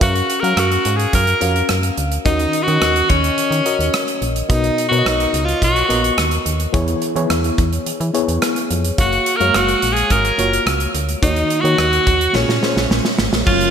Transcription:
0.00 F#2 C#4 F#4 A#4 F5, kick, closed hi-hat
0.16 closed hi-hat
0.30 closed hi-hat
0.41 F#3 C#4 F#4 A#4 F5, closed hi-hat
0.57 F#2 F#4, cross-stick, closed hi-hat
0.72 closed hi-hat
0.85 G#2, closed hi-hat
0.97 G#4, closed hi-hat
1.13 F#2 A#4, kick, closed hi-hat
1.27 closed hi-hat
1.41 F2 C#4 F#4 A#4 F5, closed hi-hat
1.56 closed hi-hat
1.69 F#2, cross-stick, closed hi-hat
1.83 closed hi-hat
1.97 D2, closed hi-hat
2.12 closed hi-hat
2.25 D#2 D#3 C#4 D#4 F#4 A#4 D#5, kick, closed hi-hat
2.39 closed hi-hat
2.53 closed hi-hat
2.63 C#4 F#4
2.67 D#3 F#4 A#4 D#5, closed hi-hat
2.82 D#2, cross-stick, closed hi-hat
2.96 closed hi-hat
3.09 D#2 C#4, kick, closed hi-hat
3.24 closed hi-hat
3.38 D#3, closed hi-hat
3.51 D#3, closed hi-hat
3.65 C#4 F#4 A#4 D#5, closed hi-hat
3.79 D#2, closed hi-hat
3.94 cross-stick, closed hi-hat
4.08 closed hi-hat
4.22 A#1, closed hi-hat
4.36 closed hi-hat
4.49 B1 B2 B3 D#4 F#4 A#4 D#5, kick, closed hi-hat
4.64 closed hi-hat
4.78 closed hi-hat
4.89 B2 B3 F#4 A#4 C#5, closed hi-hat
4.99 D#5
5.06 B1 D#4, cross-stick, closed hi-hat
5.20 closed hi-hat
5.33 C#2, closed hi-hat
5.45 F4, closed hi-hat
5.62 B1 F#4, kick, closed hi-hat
5.76 closed hi-hat
5.89 A#1 B3 F#4 A#4 D#5, closed hi-hat
6.04 closed hi-hat
6.18 D#2, cross-stick, closed hi-hat
6.31 closed hi-hat
6.46 D#2, closed hi-hat
6.60 closed hi-hat
6.73 E2 E3 B3 E4 G#4 C#5, kick, closed hi-hat
6.88 closed hi-hat
7.02 closed hi-hat
7.15 E3 B3 E4 G#4 C#5, closed hi-hat
7.30 E2, cross-stick, closed hi-hat
7.44 closed hi-hat
7.58 E2, kick, closed hi-hat
7.73 closed hi-hat
7.86 E3, closed hi-hat
8.00 E3, closed hi-hat
8.13 B3 E4 G#4 C#5, closed hi-hat
8.28 E2, closed hi-hat
8.42 cross-stick, closed hi-hat
8.56 closed hi-hat
8.71 F2, closed hi-hat
8.84 closed hi-hat
8.98 F#1 A#3 F#4 C#5 F5, kick, closed hi-hat
9.13 closed hi-hat
9.26 closed hi-hat
9.37 F#2 G#3 F#4 A#4 F5, closed hi-hat
9.41 C#5
9.47 A#3
9.54 F#1 F#4, cross-stick, closed hi-hat
9.68 closed hi-hat
9.82 A#1, closed hi-hat
9.93 G#4, closed hi-hat
10.10 G#1 A#4, kick, closed hi-hat
10.25 closed hi-hat
10.38 F#1 A#3 F4 F#4 C#5, closed hi-hat
10.53 closed hi-hat
10.66 C#2, cross-stick, closed hi-hat
10.80 closed hi-hat
10.94 D2, closed hi-hat
11.09 closed hi-hat
11.22 D#2 D#3 A#3 D#4 F#4 C#5, kick, closed hi-hat
11.36 closed hi-hat
11.50 closed hi-hat
11.61 D#3 A#3 D#4 F#4 C#5
11.65 closed hi-hat
11.78 D#2, cross-stick, closed hi-hat
11.93 closed hi-hat
12.07 D#2, kick, closed hi-hat
12.21 closed hi-hat
12.34 A#1 A#2 A#3 C#4 F4 G#4 C#5, snare
12.48 A#2, snare
12.62 A#3 F4 G#4 C5, snare
12.69 C#5
12.76 A#1, snare
12.90 A#1, snare
13.05 snare
13.18 G#1, snare
13.33 A#1, snare
13.46 F#1 F#3 A#3 C#4 F4 A#4 C#5, kick, crash
13.61 closed hi-hat

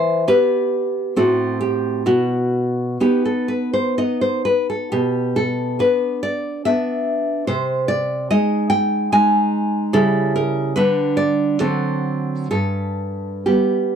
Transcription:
Already playing: E3 C5
0.28 B3 G4 B4
1.16 A2 C4 F#4 A4
1.61 G4
2.06 B2 F#4
3.00 B3 D#4 G4
3.25 A4
3.48 B4
3.73 C5
3.98 B3 D#4 D#5
4.21 C5
4.45 B4
4.70 A4
4.92 B2 G4
5.36 A4
5.79 B3 D4 B4
6.23 D5
6.65 B3 D4 E5
7.47 C3 C5
7.88 D5
8.31 G#3 D#4 D#5
8.70 G5
9.12 G#3 D#4 G#5
9.93 C#3 G3 E4 A4
10.36 A#4
10.76 D3 G3 D4 B4
11.17 D5
11.60 D3 F#3 C4 A4
12.51 G2 A4
13.46 G3 B3 G4

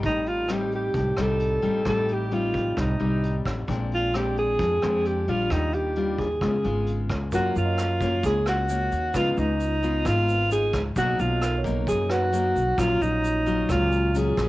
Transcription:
Already playing: G3 C4 D#4
0.03 A1 A2 D#4, kick, closed hi-hat
0.26 F4, closed hi-hat
0.48 G3 C4 D#4 G4, cross-stick, closed hi-hat
0.72 G4, closed hi-hat
0.94 C2 A2, kick, closed hi-hat
1.17 C2 G3 C4 D#4, cross-stick, closed hi-hat
1.21 A4
1.40 closed hi-hat
1.62 A1 G3 C4 D#4, closed hi-hat
1.85 A1 A2 G3 C4 D#4 A4, kick, cross-stick, closed hi-hat
2.08 closed hi-hat
2.13 G4
2.31 G3 C4 D#4 F4, closed hi-hat
2.54 kick, closed hi-hat
2.77 C2 A2 D#4, kick, cross-stick, closed hi-hat
3.00 C2 G3 C4 D#4, closed hi-hat
3.23 closed hi-hat
3.45 A1, kick, cross-stick, closed hi-hat
3.67 A#1 A#2 G#3 C4 D4, kick, closed hi-hat
3.91 F4, closed hi-hat
4.14 G#3 C4 D4 G4, cross-stick, closed hi-hat
4.37 G#4, closed hi-hat
4.59 F2 F3, kick, closed hi-hat
4.82 F2 G#3 C4 D4, cross-stick, closed hi-hat
5.05 G4, closed hi-hat
5.28 A#1 G3 D4 F4, closed hi-hat
5.50 D#2 D#3 D#4, kick, cross-stick, closed hi-hat
5.73 G4, closed hi-hat
5.96 G3 D4 F4, closed hi-hat
6.19 G#4, kick, closed hi-hat
6.41 C#2 C#3 G#3 B3 F4, kick, cross-stick, closed hi-hat
6.64 G#1 G#3 B3 F4, closed hi-hat
6.86 closed hi-hat
7.10 C#2, kick, cross-stick, closed hi-hat
7.32 F#2 F#3 A#3 C#4 F4 F#4 A#4, kick, closed hi-hat, shaker
7.50 C#5
7.55 F#2 F4, closed hi-hat, shaker
7.65 D#5
7.78 cross-stick, closed hi-hat, shaker
8.00 A#3 C#4 F4, kick, closed hi-hat, shaker
8.23 C#2 C#3 G#4, kick, closed hi-hat, shaker
8.46 F#4, cross-stick, closed hi-hat, shaker
8.69 A#3 C#4, closed hi-hat, shaker
8.91 D#2, closed hi-hat, shaker
9.14 C#2 C#3 B3 D#4 F4 B4, kick, cross-stick, closed hi-hat, shaker
9.31 F4
9.37 C#2 D#4, closed hi-hat, shaker
9.59 closed hi-hat, shaker
9.82 B3 D#4 F4, closed hi-hat, shaker
10.05 G#1 G#2 F4, kick, cross-stick, closed hi-hat, shaker
10.28 closed hi-hat, shaker
10.51 B3 D#4 F4 G#4, closed hi-hat, shaker
10.73 C#2, kick, cross-stick, closed hi-hat, shaker
10.96 B1 B2 F#3 A#3 D#4 F#4, kick, closed hi-hat, shaker
11.19 B1 F4, closed hi-hat, shaker
11.42 A#4, cross-stick, closed hi-hat, shaker
11.58 C#5
11.64 F#3 A#3 D#4, kick, closed hi-hat, shaker
11.87 F#2 G#4, kick, closed hi-hat, shaker
12.10 F#4 B4, cross-stick, closed hi-hat, shaker
12.33 F#3 A#3 D#4, closed hi-hat, shaker
12.55 B1, closed hi-hat, shaker
12.78 A#1 A#2 F#3 C#4 F4, kick, cross-stick, closed hi-hat, shaker
13.01 A#1 D#4, closed hi-hat, shaker
13.24 closed hi-hat, shaker
13.46 F#3 C#4 F4, closed hi-hat, shaker
13.69 C#2 A#2 F4, kick, cross-stick, closed hi-hat, shaker
13.92 closed hi-hat, shaker
14.15 F#3 C#4 F4 G#4, closed hi-hat, shaker
14.37 A#1, kick, cross-stick, closed hi-hat, shaker

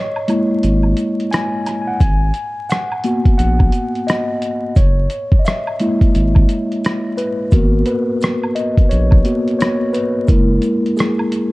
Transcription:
Already playing: C#5 D#5
0.16 high woodblock
0.28 G#3 A#3 E4, closed hi-hat, high woodblock, maracas
0.63 G#1, closed hi-hat, maracas
0.83 high woodblock
0.97 closed hi-hat, maracas
1.20 closed hi-hat
1.31 G#5, cross-stick, closed hi-hat, maracas
1.66 cross-stick, closed hi-hat, high woodblock, maracas
1.82 G#5
1.87 F#5
2.00 G#1 G#5, kick, closed hi-hat, maracas
2.34 closed hi-hat, maracas
2.70 F#5, cross-stick, closed hi-hat, maracas
2.92 high woodblock
3.04 A#3 B3 F#4, closed hi-hat, maracas
3.25 kick, closed hi-hat
3.38 A#1 F#5, closed hi-hat, maracas
3.59 kick, high woodblock
3.72 closed hi-hat, maracas
3.95 closed hi-hat
4.07 D#5, cross-stick, closed hi-hat, maracas
4.42 closed hi-hat, maracas
4.76 F#1 C#5, kick, closed hi-hat, maracas
5.10 closed hi-hat, maracas
5.32 kick
5.39 D#5
5.45 E5, cross-stick, closed hi-hat, maracas
5.67 high woodblock
5.80 G#3 A#3 E4, closed hi-hat, maracas
6.01 kick, closed hi-hat
6.15 G#1, closed hi-hat, maracas
6.35 kick, high woodblock
6.49 closed hi-hat, maracas
6.72 closed hi-hat
6.84 cross-stick, closed hi-hat, maracas
7.17 B4, closed hi-hat, maracas
7.51 G#1 A#3 B3 F#4 A#4, kick, closed hi-hat, maracas
7.86 B4, closed hi-hat, maracas
8.21 cross-stick, closed hi-hat, maracas
8.43 high woodblock
8.55 D#5, closed hi-hat, maracas
8.77 kick, closed hi-hat
8.89 A#1 C#5, closed hi-hat, maracas
9.11 kick, high woodblock
9.25 A#3 B3 F#4, closed hi-hat, maracas
9.48 closed hi-hat
9.59 C#5, cross-stick, closed hi-hat, maracas
9.93 B4, closed hi-hat, maracas
10.27 F#1 G#3 A#3 E4 A#4, kick, closed hi-hat, maracas
10.62 closed hi-hat, maracas
10.86 closed hi-hat
10.97 G#4, cross-stick, closed hi-hat, maracas
11.19 high woodblock
11.32 closed hi-hat, maracas

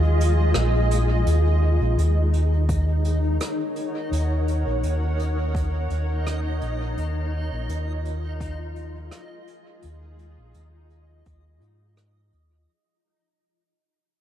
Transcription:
Already playing: D#2 F4 G#4 D#5
0.21 closed hi-hat
0.54 A#1, cross-stick
0.91 closed hi-hat
1.26 D#2 D#4 D#5, closed hi-hat
1.81 A#1
1.97 D#2, closed hi-hat
2.18 A#4
2.26 C#5
2.33 closed hi-hat
2.69 kick, closed hi-hat
3.05 closed hi-hat
3.33 F#5
3.40 cross-stick, closed hi-hat
3.76 closed hi-hat
4.12 D#2, closed hi-hat
4.48 closed hi-hat
4.66 A#1
4.83 D#2, closed hi-hat
5.19 closed hi-hat
5.55 kick, closed hi-hat
5.90 D#2, closed hi-hat
6.27 cross-stick, closed hi-hat
6.62 A#1, closed hi-hat
6.97 D#2 F4, closed hi-hat
7.52 A#1
7.69 D#2, closed hi-hat
8.02 G#4, closed hi-hat
8.40 kick, closed hi-hat
8.76 closed hi-hat
9.11 cross-stick, closed hi-hat
9.21 D#5
9.47 closed hi-hat
9.82 D#2, closed hi-hat
10.19 closed hi-hat
10.38 A#1
10.54 D#2, closed hi-hat
10.90 closed hi-hat
11.26 D#2, kick, closed hi-hat
11.61 G#2, closed hi-hat
11.97 cross-stick, closed hi-hat
12.33 D#2, closed hi-hat

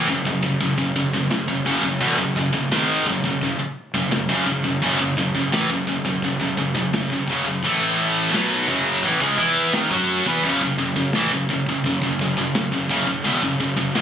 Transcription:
0.07 F#1 F#2 C#3, kick
0.25 F#1 F#2 C#3, kick
0.42 F#1 F#2 C#3, kick
0.60 F#1 F#2 C#3, kick, open hi-hat
0.78 F#1 F#2 C#3, kick
0.96 F#1 F#2 C#3, kick
1.13 F#1 F#2 C#3, kick
1.29 F#1 F#2 C#3, snare, open hi-hat
1.48 F#1 F#2 C#3, kick
1.65 F#1 F#2 C#3, kick
1.83 F#1 F#2 C#3, kick
2.00 E1 E2 B2, kick, open hi-hat
2.18 F#1 F#2 C#3, kick
2.36 F#1 F#2 C#3, kick
2.52 F#1 F#2 C#3, kick
2.71 G#1 G#2 D#3 G#3, snare, open hi-hat
3.06 F#1 F#2 C#3, kick
3.24 F#1 F#2 C#3, kick
3.41 F#1 F#2 C#3, kick, open hi-hat
3.59 muted fingered electric bass stroke, muted distorted electric guitar stroke
3.94 F#1 F#2 C#3, kick
4.10 F#1 F#2 C#3, snare, open hi-hat
4.29 F#1 F#2 C#3, kick
4.46 F#1 F#2 C#3, kick
4.64 F#1 F#2 C#3, kick
4.82 F#1 F#2 C#3, kick, open hi-hat
4.99 F#1 F#2 C#3, kick
5.17 F#1 F#2 C#3, kick
5.35 F#1 F#2 C#3, kick
5.52 A1 A2 E3, snare, open hi-hat
5.70 F#1 F#2 C#3, kick
5.87 F#1 F#2 C#3, kick
6.05 F#1 F#2 C#3, kick
6.22 F#1 F#2 C#3, kick, open hi-hat
6.40 F#1 F#2 C#3, kick
6.57 F#1 F#2 C#3, kick
6.74 F#1 F#2 C#3, kick
6.93 F#1 F#2 C#3, snare, open hi-hat
7.10 F#1 F#2 C#3, kick
7.27 F#1 F#2 C#3, kick
7.45 F#1 F#2 C#3, kick
7.63 A1 A2 E3 A3, kick, open hi-hat
8.33 B1 B2 F#3 B3, snare, open hi-hat
8.68 F#1 F#2 C#3 F#3, kick
9.03 A1 A2 E3, kick, open hi-hat
9.20 C#2 C#3 G#3, kick
9.38 E2 E3 B3 E4, kick
9.73 G#1 G#2 D#3, snare, open hi-hat
9.90 F#2 F#3 C#4 F#4, kick
10.26 E2 E3 B3, kick
10.43 F#1 F#2 C#3, kick, open hi-hat
10.61 F#1 F#2 C#3, kick
10.78 F#1 F#2 C#3, kick
10.96 F#1 F#2 C#3, kick
11.13 A1 A2 E3, snare, open hi-hat
11.31 F#1 F#2 C#3, kick
11.49 F#1 F#2 C#3, kick
11.66 F#1 F#2 C#3, kick
11.84 F#1 F#2 C#3, kick, open hi-hat
12.02 F#1 F#2 C#3, kick
12.19 F#1 F#2 C#3, kick
12.37 F#1 F#2 C#3, kick
12.55 F#1 F#2 C#3, snare, open hi-hat
12.72 F#1 F#2 C#3, kick
12.89 F#1 F#2 C#3, kick
13.06 F#1 F#2 C#3, kick
13.24 E1 E2 B2, kick, open hi-hat
13.42 F#1 F#2 C#3, kick
13.60 F#1 F#2 C#3, kick
13.76 F#1 F#2 C#3, kick
13.95 G#1 G#2 D#3 G#3, snare, open hi-hat

